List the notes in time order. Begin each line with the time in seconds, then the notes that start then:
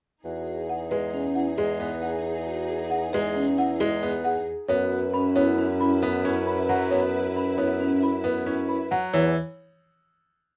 0.24 E2 D#4 F#4 G#4
0.47 G#4
0.69 F#5
0.91 G#3 B4
1.14 C#4
1.35 E4 F#5
1.58 G#3 G#4
1.80 B3
2.02 G#4 F#5
2.47 F#4
2.69 G#4
2.90 F#5
3.13 G#3 B4
3.36 C#4
3.58 E4 F#5
3.80 G#3 G#4
4.03 B3
4.25 G#4 F#5
4.69 F#2 B3 E4 F#4 B4 C#5
4.92 B4
5.14 C#4 B5
5.36 B3 E4 C#5
5.58 C#4
5.80 E4 B5
6.02 B3 B4
6.25 C#4 E4
6.47 B4 B5
6.69 F#3 F#5
6.91 B3 F#4 C#5
7.14 B4
7.36 C#4 B5
7.58 B3 E4 C#5
7.80 C#4
8.02 E4 B5
8.24 B3 B4
8.46 C#4 E4
8.69 B4 B5
8.91 F#3 F#5
9.13 E2 E3 E4 C#5